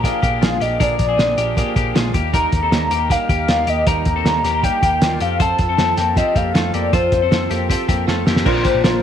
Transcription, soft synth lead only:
0.04 0.63 F5 loud
0.62 0.81 D#5 medium
0.82 1.92 D5 loud
2.34 3.13 A#5 loud
3.12 3.71 F5 loud
3.69 3.87 D#5 medium
3.87 4.65 A#5 loud
4.64 5.23 G5 loud
5.22 5.40 F5 medium
5.42 6.19 A5 loud
6.17 6.39 D#5 medium
6.37 6.76 F5 medium
6.74 6.93 D5 medium
6.94 8.04 C5 medium
8.47 8.82 C5 loud
8.84 9.03 C5 medium

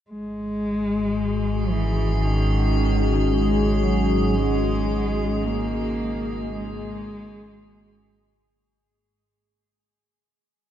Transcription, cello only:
0.09 1.72 G#3 medium
1.71 2.25 E3 medium
2.24 3.32 D#3 medium
3.31 3.84 G#3 medium
3.82 4.37 F#3 medium
4.35 5.46 G#3 loud
5.44 6.53 A#3 medium
6.54 8.10 G#3 medium

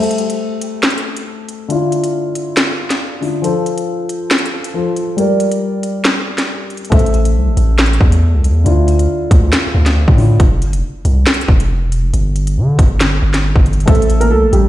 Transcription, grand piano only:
0.00 1.66 A3 medium
0.00 1.66 A4 medium
0.00 1.67 C5 medium
0.00 1.67 E5 medium
1.68 3.18 D3 medium
1.68 3.19 D4 medium
1.68 3.20 E4 medium
1.68 3.20 F4 medium
3.21 3.43 D3 soft
3.21 3.43 D4 soft
3.21 3.44 E4 soft
3.21 3.41 F4 soft
3.42 4.71 F3 medium
3.42 4.71 F4 medium
3.42 4.72 A4 medium
3.42 4.72 C5 medium
4.74 5.18 F3 medium
4.74 5.18 F4 medium
4.74 5.18 A4 soft
4.74 5.18 C5 medium
5.17 6.88 G3 medium
5.17 6.88 G4 medium
5.17 6.89 A#4 medium
5.17 6.89 D5 medium
6.90 8.61 A3 medium
6.90 8.62 A4 medium
6.90 8.62 C5 medium
6.90 8.63 E5 medium
8.64 10.14 D3 medium
8.64 10.15 D4 medium
8.64 10.15 E4 medium
8.64 10.16 F4 medium
10.16 10.39 D3 soft
10.16 10.39 D4 soft
10.16 10.39 E4 soft
10.16 10.40 F4 medium
13.86 14.69 A3 medium
13.86 14.69 A4 medium
13.86 14.69 C5 medium
13.86 14.69 E5 medium

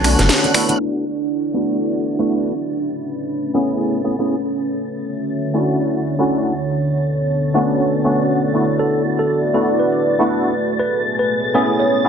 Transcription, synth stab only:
0.04 0.52 A3 loud
0.04 0.52 B3 medium
0.04 0.52 C#4 medium
0.04 0.52 D4 medium
0.04 0.52 F#4 loud
0.54 1.04 A3 medium
0.54 1.04 B3 medium
0.54 1.04 D4 medium
0.54 1.05 E4 medium
0.54 1.05 F#4 medium
1.54 2.15 A3 medium
1.54 2.15 B3 medium
1.54 2.16 D4 medium
1.54 2.16 E4 medium
1.54 2.16 F#4 medium
2.19 2.53 A3 loud
2.19 2.53 B3 medium
2.19 2.53 D4 medium
2.19 2.53 E4 medium
2.19 2.53 F#4 loud
3.54 4.02 A3 medium
3.54 4.02 B3 medium
3.54 4.02 C#4 medium
3.54 4.02 E4 medium
3.54 4.02 G#4 loud
4.04 4.15 A3 medium
4.04 4.16 B3 medium
4.04 4.16 C#4 medium
4.04 4.16 E4 medium
4.04 4.16 G#4 medium
4.19 4.35 A3 medium
4.19 4.35 B3 medium
4.19 4.35 C#4 medium
4.19 4.35 E4 medium
4.19 4.35 G#4 medium
5.54 6.15 A3 medium
5.54 6.15 C#4 medium
5.54 6.16 D4 medium
5.54 6.16 E4 medium
5.54 6.16 F#4 medium
6.19 6.53 A3 loud
6.19 6.53 C#4 medium
6.19 6.53 D4 medium
6.19 6.53 E4 medium
6.19 6.53 F#4 loud
7.54 8.02 A3 loud
7.54 8.02 B3 medium
7.54 8.02 C#4 medium
7.54 8.02 D4 medium
7.54 8.02 F#4 loud
8.04 8.52 A3 medium
8.04 8.52 B3 medium
8.04 8.52 C#4 medium
8.04 8.52 D4 medium
8.04 8.52 F#4 loud
8.54 9.52 A3 medium
8.54 9.52 B3 medium
8.54 9.52 D4 medium
8.54 9.52 E4 medium
8.54 9.52 F#4 medium
9.54 10.15 A3 medium
9.54 10.15 B3 medium
9.54 10.16 D4 medium
9.54 10.16 E4 medium
9.54 10.16 F#4 medium
10.19 10.53 A3 medium
10.19 10.53 B3 medium
10.19 10.53 D4 medium
10.19 10.53 E4 medium
10.19 10.53 F#4 loud
11.54 12.02 A3 medium
11.54 12.02 B3 medium
11.54 12.02 C#4 medium
11.54 12.02 E4 medium
11.54 12.02 G#4 loud
12.04 12.09 A3 medium
12.04 12.09 B3 medium
12.04 12.09 C#4 medium
12.04 12.09 E4 medium
12.04 12.09 G#4 medium

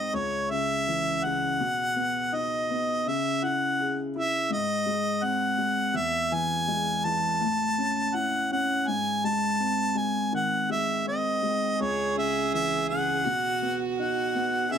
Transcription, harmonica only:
0.00 0.16 D#5 medium
0.15 0.52 C#5 medium
0.51 1.26 E5 medium
1.25 2.36 F#5 medium
2.35 3.10 D#5 medium
3.08 3.45 E5 medium
3.44 4.00 F#5 medium
4.17 4.49 E5 medium
4.53 5.26 D#5 medium
5.25 5.98 F#5 medium
5.97 6.35 E5 medium
6.34 7.06 G#5 medium
7.05 8.17 A5 medium
8.16 8.51 F#5 medium
8.52 8.90 F#5 medium
8.88 9.27 G#5 medium
9.25 9.99 A5 medium
9.97 10.33 G#5 medium
10.35 10.68 F#5 medium
10.71 11.04 E5 medium
11.08 11.83 D#5 medium
11.81 12.17 C#5 medium
12.18 12.51 E5 medium
12.54 12.87 E5 medium
12.89 13.81 F#5 medium
13.98 14.73 F#5 medium
14.72 14.78 E5 medium

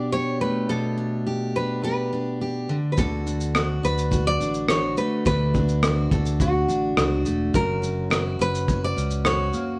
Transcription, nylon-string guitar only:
0.00 0.12 D5 medium
0.12 0.41 C#5 medium
0.41 0.70 B4 medium
0.69 1.58 A4 medium
1.56 1.83 B4 medium
1.84 2.66 B4 medium
2.92 2.98 B4 medium
2.98 3.86 A4 medium
3.85 4.27 B4 medium
4.27 4.70 D5 loud
4.70 4.97 C#5 medium
4.98 5.24 B4 medium
5.27 6.15 B4 loud
6.12 6.41 A4 medium
6.41 7.22 F#4 medium
7.55 8.36 A#4 medium
8.41 8.84 B4 medium
8.84 9.23 D5 loud
9.26 9.79 C#5 loud

